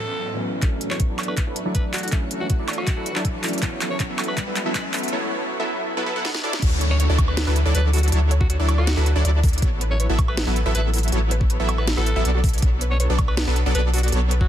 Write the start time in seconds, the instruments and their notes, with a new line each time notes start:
Already playing: felt piano A2 E3 F#3 B3 C#4, ambient pad A2 F#3 B3 C#4, alto saxophone A4, noise sweep
0.33 felt piano A2 E3 F#3 B3 C#4
0.61 sub bass D2, felt piano E3 F#3 A3, supersaw synth F#3 D4 E4 A4 C#5, ambient pad F#4 E5 C#6, kick, clap, closed hi-hat, riser
0.81 closed hi-hat
0.89 felt piano E3 F#3 A3 B3, alto saxophone C#5, clap
1.00 alto saxophone C#5, kick, closed hi-hat
1.09 sub bass D2, supersaw synth F#3 D4 E4 A4 D5
1.19 clap, closed hi-hat, high woodblock
1.23 closed hi-hat
1.28 alto saxophone B4, high woodblock
1.37 alto saxophone B4, kick, clap, closed hi-hat
1.47 sub bass D2, supersaw synth F#3 D4 E4 A4 B4
1.56 closed hi-hat
1.64 sub bass D2, felt piano E3 F#3 A3, supersaw synth F#3 D4 E4 A4 D5
1.75 sub bass D2, supersaw synth F#3 D4 E4 D5, alto saxophone B4, kick, closed hi-hat
1.93 alto saxophone F#4, clap, open hi-hat
1.98 closed hi-hat
2.03 alto saxophone F#4, closed hi-hat
2.08 felt piano E3, closed hi-hat
2.12 sub bass D2, felt piano F#3 A3 C#4, supersaw synth F#3 D4 E4 A4 C#5, kick, clap, closed hi-hat
2.31 closed hi-hat
2.39 felt piano E3 F#3 A3, alto saxophone F#4
2.50 alto saxophone F#4, kick, closed hi-hat
2.59 sub bass D2, supersaw synth F#3 D4 E4 A4 D5
2.68 clap, closed hi-hat, high woodblock
2.73 closed hi-hat
2.78 alto saxophone F#4, high woodblock
2.87 kick, clap, closed hi-hat
2.97 sub bass D2, supersaw synth F#3 D4 E4 A4 B4
3.06 closed hi-hat
3.16 sub bass D2, supersaw synth F#3 D4 E4 A4 D5, clap
3.25 sub bass D2, supersaw synth F#3 D4 E4 A4, kick, closed hi-hat
3.43 felt piano E3 F#3 A3 C#4, clap, open hi-hat
3.48 closed hi-hat
3.53 closed hi-hat
3.58 felt piano E3, closed hi-hat
3.62 sub bass A1, supersaw synth F#3 B3 E4 A4 C#5, felt piano B3, ambient pad B4 A5, kick, clap, closed hi-hat
3.81 clap, closed hi-hat
3.89 felt piano E3 F#3 B3, alto saxophone C#5
3.93 felt piano C#4
4.00 alto saxophone C#5, kick, clap, closed hi-hat
4.09 sub bass A1, supersaw synth F#3 B3 E4 A4 E5
4.19 clap, closed hi-hat, high woodblock
4.24 closed hi-hat
4.28 alto saxophone B4, high woodblock
4.37 alto saxophone B4, kick, clap, closed hi-hat
4.47 sub bass A1, supersaw synth F#3 B3 E4 A4 B4
4.56 clap, closed hi-hat
4.64 felt piano E3 F#3 B3, supersaw synth F#3 B3 E4 A4 E5
4.68 felt piano C#4
4.75 supersaw synth F#3 B3 E4 A4 E5, alto saxophone B4, kick, clap, closed hi-hat
4.94 clap, open hi-hat
4.99 closed hi-hat
5.03 closed hi-hat
5.08 closed hi-hat
5.13 supersaw synth F#3 B3 E4 A4 C#5
5.60 supersaw synth F#3 B3 E4 A4 E5
5.97 supersaw synth F#3 B3 E4 A4 B4
6.06 supersaw synth F#3 B3 E4 A4 B4
6.16 supersaw synth F#3 B3 E4 A4 F#5
6.25 snare
6.34 snare
6.44 supersaw synth F#3 D4 E4 A4 D5
6.53 snare
6.62 sub bass D2, supersaw synth F#3 D4 E4 A4 C#5, synth arpeggio sound F#4, kick, closed hi-hat, crash, downlifter
6.81 synth arpeggio sound C#5, closed hi-hat
6.91 alto saxophone C#5
7.00 synth arpeggio sound C#5, alto saxophone C#5, closed hi-hat
7.09 sub bass D2, supersaw synth F#3 D4 E4 A4 D5, synth arpeggio sound C#5
7.19 kick, closed hi-hat, high woodblock
7.28 synth arpeggio sound A4, alto saxophone B4, high woodblock
7.37 alto saxophone B4, snare, closed hi-hat
7.47 sub bass D2, supersaw synth F#3 D4 E4 A4 B4, synth arpeggio sound F#4
7.56 closed hi-hat
7.66 sub bass D2, supersaw synth F#3 D4 E4 A4 D5, synth arpeggio sound C#5
7.75 sub bass D2, supersaw synth F#3 D4 E4 A4 D5, alto saxophone B4, synth arpeggio sound C#5, closed hi-hat
7.93 alto saxophone F#4, synth arpeggio sound A4, open hi-hat
7.98 closed hi-hat
8.03 alto saxophone F#4, closed hi-hat
8.08 closed hi-hat
8.12 sub bass D2, supersaw synth F#3 D4 E4 A4 C#5, synth arpeggio sound F#4, closed hi-hat
8.31 synth arpeggio sound C#5, closed hi-hat
8.41 alto saxophone F#4, kick
8.50 alto saxophone F#4, synth arpeggio sound C#5, closed hi-hat
8.59 sub bass D2, supersaw synth F#3 D4 E4 A4 D5, synth arpeggio sound C#5
8.69 closed hi-hat, high woodblock
8.78 alto saxophone F#4, synth arpeggio sound A4, high woodblock
8.87 snare, closed hi-hat
8.97 sub bass D2, supersaw synth F#3 D4 E4 A4 B4, synth arpeggio sound F#4
9.06 closed hi-hat
9.16 sub bass D2, supersaw synth F#3 D4 E4 A4 D5, synth arpeggio sound C#5
9.25 sub bass D2, supersaw synth F#3 D4 E4 A4 D5, synth arpeggio sound C#5, closed hi-hat
9.44 synth arpeggio sound A4, kick, open hi-hat
9.48 closed hi-hat
9.53 closed hi-hat
9.58 closed hi-hat
9.62 sub bass A1, supersaw synth F#3 B3 E4 A4 C#5, synth arpeggio sound F#4, kick, closed hi-hat
9.81 synth arpeggio sound B4, closed hi-hat
9.91 alto saxophone C#5
10.00 synth arpeggio sound B4, alto saxophone C#5, closed hi-hat
10.09 sub bass A1, supersaw synth F#3 B3 E4 A4 E5, synth arpeggio sound B4
10.19 kick, closed hi-hat, high woodblock
10.28 synth arpeggio sound A4, alto saxophone B4, high woodblock
10.37 alto saxophone B4, snare, closed hi-hat
10.47 sub bass A1, supersaw synth F#3 B3 E4 A4 B4, synth arpeggio sound F#4
10.56 closed hi-hat
10.66 sub bass A1, supersaw synth F#3 B3 E4 A4 E5, synth arpeggio sound B4
10.75 sub bass A1, supersaw synth F#3 B3 E4 A4 E5, alto saxophone B4, synth arpeggio sound B4, closed hi-hat
10.94 synth arpeggio sound A4, open hi-hat
10.98 closed hi-hat
11.03 closed hi-hat
11.08 closed hi-hat
11.12 sub bass A1, supersaw synth F#3 B3 E4 A4 C#5, synth arpeggio sound F#4, closed hi-hat
11.31 synth arpeggio sound B4, closed hi-hat
11.41 kick
11.50 synth arpeggio sound B4, closed hi-hat
11.59 sub bass A1, supersaw synth F#3 B3 E4 A4 E5, synth arpeggio sound B4
11.69 closed hi-hat, high woodblock
11.78 synth arpeggio sound A4, alto saxophone B4, high woodblock
11.87 snare, closed hi-hat
11.97 sub bass A1, supersaw synth F#3 B3 E4 A4 B4, synth arpeggio sound F#4, alto saxophone A4
12.06 closed hi-hat
12.16 sub bass A1, supersaw synth F#3 B3 E4 A4 E5, synth arpeggio sound B4
12.25 sub bass B1, supersaw synth F#3 B3 D4 A4 D5, closed hi-hat
12.35 synth arpeggio sound F#4
12.44 kick, open hi-hat
12.49 closed hi-hat
12.53 synth arpeggio sound C#5, closed hi-hat
12.58 closed hi-hat
12.62 sub bass B1, supersaw synth F#3 B3 D4 A4 C#5, synth arpeggio sound F#4, kick, closed hi-hat
12.81 synth arpeggio sound B4, closed hi-hat
12.91 alto saxophone C#5
13.00 synth arpeggio sound B4, alto saxophone C#5, closed hi-hat
13.10 sub bass B1, supersaw synth F#3 B3 D4 A4 D5, synth arpeggio sound B4
13.19 kick, closed hi-hat, high woodblock
13.28 synth arpeggio sound A4, alto saxophone B4, high woodblock
13.37 alto saxophone B4, snare, closed hi-hat
13.47 sub bass B1, supersaw synth F#3 B3 D4 A4 B4, synth arpeggio sound F#4
13.56 closed hi-hat
13.66 sub bass B1, supersaw synth F#3 B3 D4 A4 D5, synth arpeggio sound A4
13.75 sub bass B1, supersaw synth F#3 B3 D4 A4 D5, alto saxophone B4, synth arpeggio sound B4, closed hi-hat
13.94 alto saxophone F#4, synth arpeggio sound A4, open hi-hat
13.98 closed hi-hat
14.03 alto saxophone F#4, closed hi-hat
14.08 closed hi-hat
14.12 sub bass B1, supersaw synth F#3 B3 D4 A4 C#5, synth arpeggio sound F#4, closed hi-hat
14.31 synth arpeggio sound B4, closed hi-hat
14.41 alto saxophone F#4, kick